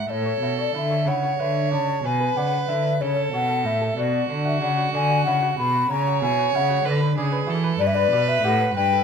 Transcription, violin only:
0.10 A4
1.07 C#5
2.06 B4
3.02 A4
3.98 F#4
5.90 C#5
6.85 B4
7.18 G#4
7.50 A4
7.81 B4
8.76 B4

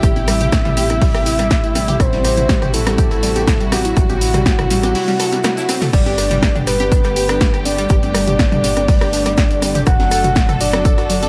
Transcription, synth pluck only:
0.03 G4
0.16 E4
0.28 G3
0.41 G4
0.52 E4
0.65 G3
0.77 G4
0.90 E4
1.02 G3
1.15 G4
1.26 E4
1.39 G3
1.51 G4
1.64 E4
1.75 G3
1.88 G4
2.00 E4
2.13 G3
2.25 G4
2.38 E4
2.49 G3
2.62 G4
2.74 E4
2.87 G3
2.98 G4
3.11 E4
3.23 G3
3.36 G4
3.48 E4
3.60 G3
3.72 G4
3.85 E4
3.97 G3
4.10 G4
4.21 E4
4.34 G3
4.46 G4
4.59 E4
4.71 G3
4.83 G4
4.95 E4
5.08 G3
5.20 A4
5.33 G3
5.44 G3
5.57 E4
5.69 C4
5.82 A3
5.93 G3
6.06 G4
6.18 D4
6.31 G3
6.43 G4
6.56 D4
6.67 G3
6.80 G4
6.92 D4
7.05 G3
7.16 G4
7.29 D4
7.41 G3
7.54 G4
7.65 D4
7.78 G3
7.90 G4
8.03 D4
8.15 G3
8.28 G4
8.39 D4
8.52 G3
8.64 G4
8.77 D4
8.88 G3
9.01 G4
9.13 D4
9.26 G3
9.38 G4
9.51 D4
9.62 G3
9.75 G4
9.87 F#4
10.00 F#3
10.11 A4
10.24 F#4
10.36 F#3
10.49 A4
10.61 F#4
10.73 F#3
10.85 A4
10.98 F#4
11.10 F#3
11.23 A4

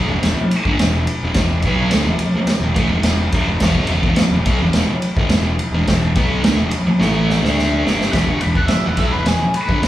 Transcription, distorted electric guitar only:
0.08 E2 B2
0.22 E2 B2
0.37 muted distorted electric guitar stroke
0.67 G2 D3
0.81 E2 B2
1.24 E2 B2
1.37 E2 B2
1.65 B2 F#3 B3
1.91 D3 A3
2.05 E2 B2
2.20 muted distorted electric guitar stroke
2.36 muted distorted electric guitar stroke
2.48 muted distorted electric guitar stroke
2.63 E2 B2
2.74 A2 E3
2.89 E2 B2
3.05 E2 B2
3.34 E2 B2
3.49 E2 B2
3.62 E2 B2
3.77 G2 D3
3.91 E2 B2
4.05 E2 B2
4.21 muted distorted electric guitar stroke
4.34 E2 B2
4.47 B2 F#3
4.62 E2 B2
4.78 E2 B2
4.92 muted distorted electric guitar stroke
5.18 G2 D3
5.31 E2 B2
5.74 E2 B2
5.89 E2 B2
6.16 B2 F#3 B3
6.44 D3 A3
6.57 E2 B2
6.71 muted distorted electric guitar stroke
6.85 muted distorted electric guitar stroke
6.99 A2 E3 A3
7.42 D3 A3 D4
7.84 G2 D3 G3
8.11 E2 B2
8.26 G2 D3
8.42 E2 B2
8.56 E2 B2
8.70 muted distorted electric guitar stroke
8.85 E2 B2
8.98 B2 F#3
9.14 E2 B2
9.27 E2 B2
9.42 muted distorted electric guitar stroke
9.70 G2 D3
9.83 E2 B2

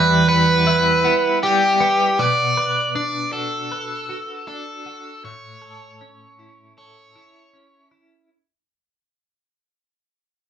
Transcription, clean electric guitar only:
Already playing: E2 G3 E4
0.29 B3
0.67 E4
1.04 B3
1.43 G3
1.81 B3
2.19 B2
2.57 B4
2.95 D4
3.33 F#4
3.72 B4
4.09 F#4
4.47 D4
4.86 F#4
5.24 A2
5.62 A4
6.01 C#4
6.39 E4
6.78 A4
7.16 E4
7.54 C#4
7.91 E4

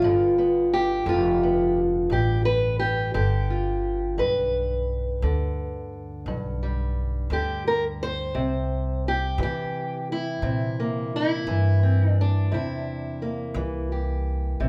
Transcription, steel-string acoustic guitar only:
Already playing: F4
0.04 G2 D3 B3
0.38 B3
0.73 G4
1.06 D3 F4
1.43 B3
2.11 G2 G4
2.45 B4
2.79 G4
3.14 D3 G4
3.50 F4
4.18 G2 B4
5.23 D3
6.28 G2
6.63 G3
7.32 D3 G4
7.68 A#4
8.03 C5
8.35 C3
9.08 G4
9.39 E3 G4
10.12 E4
10.43 C3
10.80 A#3
11.16 E4
11.47 E3
11.83 C4
12.12 D4
12.21 D4
12.52 C3 E4
13.22 A#3
13.56 E3
13.92 G4
14.60 C3

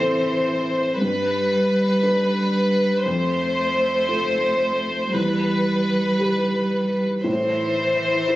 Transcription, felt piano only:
Already playing: A2 C4
0.00 A4
1.02 G2
2.03 D4 B4
3.05 F2
4.08 F4 A4
5.13 E2
6.19 G4 B4
7.24 A2
8.28 E4 C5

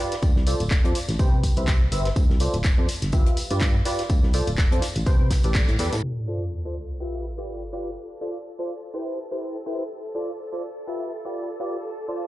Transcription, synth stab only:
0.00 F4 G4 B4 D5
0.47 F4 A4 C5 D5
0.84 F4 A4 C5 D5
1.19 G4 B4 C5 G5
1.57 G4 B4 C5 E5
1.92 G4 B4 C5 E5
2.40 F4 A4 C5 D5
2.78 F4 A4 C5 D5
3.13 F4 G4 B4 E5
3.51 F4 G4 B4 D5
3.85 F4 G4 B4 D5
4.34 F4 A4 C5 D5
4.72 F4 A4 C5 D5
5.06 G4 B4 C5 G5
5.44 G4 A4 B4 D5
5.79 G4 A4 B4 D5
6.27 F4 A4 C5 D5
6.65 F4 A4 C5 D5
7.00 F4 G4 B4 E5
7.38 F4 G4 B4 D5
7.73 F4 G4 B4 D5
8.21 F4 A4 C5 D5
8.59 F4 A4 C5 D5
8.94 E4 G4 B4 C5
9.31 E4 G4 B4 C5
9.66 E4 G4 B4 C5
10.15 F4 A4 C5 D5
10.52 F4 A4 C5 D5
10.87 F4 G4 B4 E5
11.25 F4 G4 B4 D5
11.60 F4 G4 B4 D5
12.08 F4 A4 C5 D5

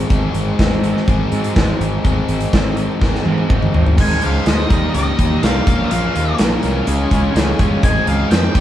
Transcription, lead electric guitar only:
4.01 G#5
4.24 F5
4.48 D#5
4.94 D#5
5.42 F5
5.84 D#5
5.90 F5
7.84 G#5
8.07 F5
8.31 G5

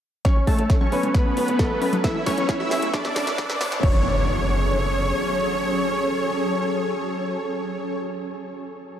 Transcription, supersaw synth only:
0.25 C#4 C#5
0.47 A3 A4
0.81 C#4 C#5
1.15 B3 B4
2.04 E4 E5
2.27 C#4 C#5
2.60 E4 E5
2.94 D4 D5
3.83 C#5

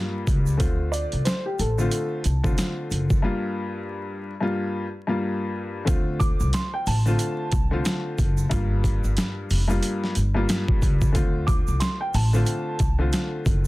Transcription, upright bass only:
0.27 C#2
0.60 D2
1.13 C2
1.59 A1
2.25 C2
2.91 F#1
5.88 D2
6.40 C2
6.87 A1
7.53 C2
8.19 F#1
8.51 G1
9.04 G1
9.51 F1
10.17 G1
10.82 C#2
11.15 D2
11.68 C2
12.14 A1
12.80 C2
13.46 F#1

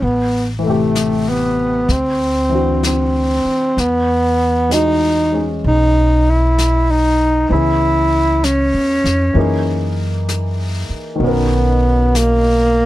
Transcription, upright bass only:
0.02 A1
1.88 D2
3.45 muted upright bass stroke
3.77 E2
5.64 B1
7.50 C#2
8.74 E2
9.04 F2
9.35 F#2
10.89 muted upright bass stroke
11.20 B1

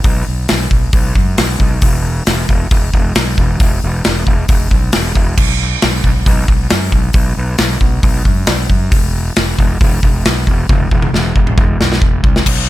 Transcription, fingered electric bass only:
0.04 B1
0.28 B1
0.51 B1
0.71 B1
0.93 B1
1.16 F#2
1.38 B1
1.60 B1
1.82 E1
2.27 E1
2.49 E1
2.71 E1
2.94 E1
3.16 B1
3.38 E1
3.60 E1
3.84 E1
4.06 E1
4.27 E1
4.49 E1
4.71 B1
4.96 E1
5.16 E1
5.38 B1
5.84 B1
6.05 B1
6.27 B1
6.48 B1
6.71 F#2
6.93 B1
7.14 B1
7.37 B1
7.59 B1
7.81 B1
8.03 B1
8.26 F#2
8.48 B1
8.70 F#2
8.92 E1
9.37 E1
9.59 E1
9.81 E1
10.03 E1
10.26 B1
10.47 E1
10.69 E1
10.91 E1
11.13 E1
11.36 E1
11.58 E1
11.80 B1
12.01 E1
12.24 C2
12.47 B1

